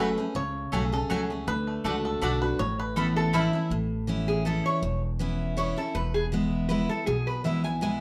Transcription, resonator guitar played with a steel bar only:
3.16 A4
3.34 E4
4.28 G#4
4.45 A4
4.66 C#5
5.57 C#5
5.78 A4
5.95 B4
6.14 G#4
6.69 B4
6.89 A4
7.06 G#4
7.27 B4
7.45 E5
7.64 G#5
7.82 G#5

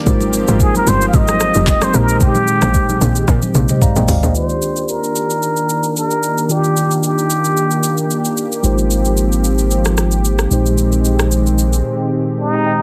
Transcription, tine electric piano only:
0.06 G#3 D#4 F4 G4 A#4 C5
1.93 A#2 G#3 D#4 G4 C5
3.70 C5 D#5
3.82 D5 F5 A#5
3.97 D#5 G5
4.09 D5 F5
4.23 C5 D#5
4.34 D#3 A#3 F4 G4 D5
6.49 D#3 A#3 F4 G4 D5
8.63 G#3 D#4 F4 G4 A#4 C5
10.50 A#2 G#3 D#4 G4 C5
12.54 G5 A#5
12.66 D#5 G5

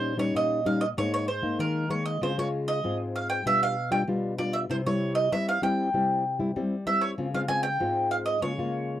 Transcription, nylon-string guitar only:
Already playing: A#2 G3 C#4 D#4
0.17 G3 C#4 D#4
0.35 A#2
0.65 G3 C#4 D#4
0.97 G#2 G#3 A#3 D#4
1.42 G#3 A#3 D#4
1.59 D#3
1.90 G#3 A#3 D#4
2.21 C#3 G#3 C4 F4
2.38 G#3 F4
2.84 G#2 G#3 C4 F4
3.46 B2 G3 D4 F4
3.91 G3 D4 F4
4.07 B2 G3 D4 F4
4.38 G3 D4 F4
4.70 C3 G3 C4 E4
4.86 G3 E4
5.32 G3 C4 E4
5.62 G3 C4 E4
5.94 C3 G3 C4 E4
6.39 G3 C4 E4
6.56 G3 C4 E4
6.86 G3 C4 E4
7.18 C#3 G#3 C4 F4
7.34 G#3 C4 F4
7.48 G#3 C4 F4
7.80 G#2 G#3 C4 F4
8.42 C#3 G#3 A#3 F4
8.58 G#3 A#3 F4

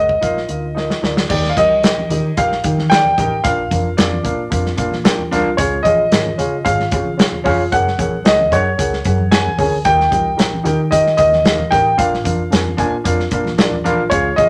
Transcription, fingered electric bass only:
Already playing: C#2
0.22 A#1
0.49 D2
1.03 D2
1.30 D#2
1.57 C2
1.83 A#1
2.10 D#3
2.38 A#1
2.64 D#3
3.18 A1
3.45 A#1
3.71 F1
3.98 F2
4.25 A#2
4.51 F2
4.78 A#2
5.31 C2
5.58 C#2
5.85 A#1
6.11 G#1
6.38 C#3
6.65 G#1
6.92 C#3
7.45 F1
7.72 F#1
7.99 A#1
8.26 C#2
8.52 F#2
8.79 C#2
9.05 F#2
9.58 D2
9.85 D#2
10.12 C2
10.38 A#1
10.65 D#3
11.19 D#2
11.72 A1
11.99 A#1
12.25 F1
12.52 F2
12.78 A#2
13.05 F2
13.32 A#2
13.58 A#1
13.85 A#1
14.11 C#2
14.38 A#1

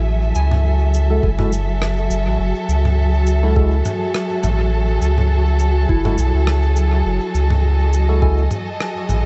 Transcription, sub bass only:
Already playing: A1
0.35 C#2
1.23 F#1
2.10 F#1
2.26 A1
2.40 F#1
2.69 C#2
4.44 A1
5.02 C#2
5.89 F#1
6.18 B1
6.34 C#2
7.06 F#1
7.35 C#2
9.09 A1

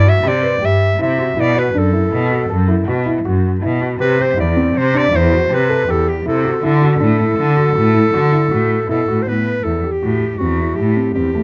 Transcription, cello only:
Already playing: G2
0.23 C3
0.62 G2
0.99 C3
1.37 B2
1.75 F#2
2.12 B2
2.50 F#2
2.88 B2
3.25 F#2
3.63 B2
4.00 C3
4.38 E2
4.76 C3
5.13 E2
5.51 C3
5.88 E2
6.26 C3
6.63 D3
7.00 A2
7.38 D3
7.76 A2
8.14 D3
8.52 A2
8.90 B2
9.09 A2
9.28 A2
9.66 E2
10.03 A2
10.41 E2
10.78 A2
11.16 E2

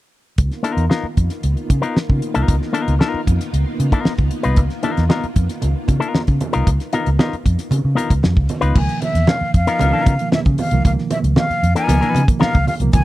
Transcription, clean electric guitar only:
0.63 B3 D#4 F4 A#4
0.90 B3 D#4 F4 A#4
1.82 B3 D#4 F4 A#4
2.34 B3 D#4 F4 A#4
2.73 B3 D#4 F4 A#4
2.99 B3 D#4 F4 A#4
3.92 B3 D#4 F4 A#4
4.43 B3 D#4 F4 B4
4.83 B3 D#4 F4 A#4
5.09 B3 D#4 F4 A#4
6.00 B3 D#4 F4 A#4
6.53 B3 D#4 F4 A#4
6.93 B3 D#4 F4 A#4
7.19 B3 D#4 F4 A#4
7.95 B3 D#4 F4 A#4
8.61 B3 D#4 F4 B4
9.67 F3 B3 D#4 A#4
9.80 F3 B3 D#4 A#4
9.93 F3 B3 D#4 A#4
11.75 F3 B3 D#4 A#4
11.87 F3 B3 D#4 A#4
12.01 F3 B3 D#4 B4
12.40 F3 B3 D#4 A#4

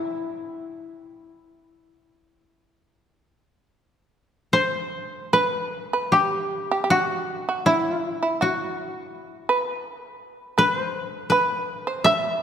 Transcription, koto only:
Already playing: E4 F#4
4.53 C5
5.33 B4
6.12 G4
6.90 F#4
7.66 E4
8.42 F#4
10.58 B4
10.75 C5
11.30 B4
12.04 E5

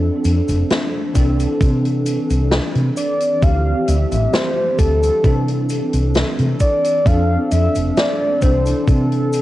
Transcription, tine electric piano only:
Already playing: F3 C4 D4 A4
1.14 E3 C4 D4 A4
3.41 E3 F3 C4 G4
5.23 E3 C4 D4 A4
7.05 F3 C4 D4 A4
8.40 E3 C4 D4 A4

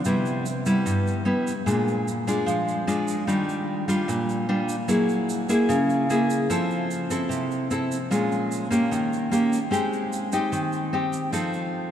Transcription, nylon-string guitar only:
0.05 C3 G3 B3 E4
0.66 G3 B3 E4
0.86 G2
1.25 G3 B3 E4
1.66 A#2 G#3 D4 F4
2.27 G#3 D4 F4
2.46 F3
2.87 G#3 D4 F4
3.27 D#3 G3 D4 F4
3.88 G3 D4 F4
4.08 A#2
4.49 G3 D4 F4
4.88 F#3 A#3 E4 G#4
5.49 A#3 E4 G#4
5.69 C#3
6.10 A#3 E4 G#4
6.50 F3 C4 E4 A4
7.10 C4 E4 A4
7.29 C3
7.71 C4 E4 A4
8.11 A#2 G#3 C#4 F4
8.71 A#3 C#4 G4
8.91 D#3
9.31 A#3 C#4 G4
9.71 G#3 C4 D#4 G4
10.32 C4 D#4 G4
10.52 D#3
10.93 C4 D#4 G4
11.33 F3 C4 D#4 A4

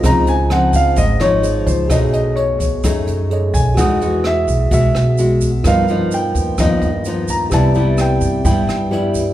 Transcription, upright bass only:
0.04 C#2
0.96 G#1
1.21 G#1
1.67 C#2
1.90 B1
2.84 F#2
3.07 F#2
3.54 B1
3.77 E2
4.47 B1
4.71 B1
4.94 B1
5.64 G2
6.35 D#2
6.58 D#2
6.81 D#2
7.52 C2
8.21 G2
8.45 G2
8.67 G2

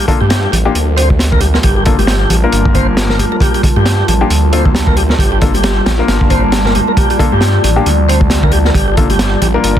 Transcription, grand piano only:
0.08 A#3 D4 F4 A4
0.65 A#3 D4 F4 G4
1.86 A#3 D4 F4 A4
2.44 A#3 D4 F4 A#4
4.21 A#3 D4 F4 G4
4.53 A#3 D4 F4 A4
5.42 A#3 D4 F4 A4
5.99 A#3 D4 F4 A#4
7.19 A#3 D4 F4 A4
7.76 A#3 D4 F4 G4
8.97 A#3 D4 F4 A4
9.54 A#3 D4 F4 A#4

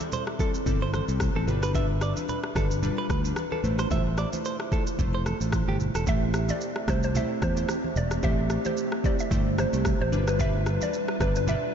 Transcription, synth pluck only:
6.09 E5
6.50 D5
6.90 C5
7.04 C5
7.17 E5
7.43 C5
7.97 D5
8.24 E5
8.66 C5
9.06 D5
9.20 E5
9.60 C5
10.01 C5
10.29 B4
10.41 E5
10.83 D5
11.22 B4
11.37 B4
11.49 E5

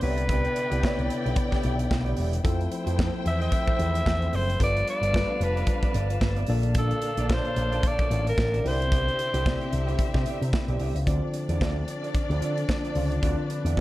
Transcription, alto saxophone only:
0.02 B4
3.27 E5
3.41 E5
4.35 C5
4.63 D5
4.90 D5
5.43 B4
6.78 A4
7.33 C5
7.87 D5
8.29 A#4
8.67 C5

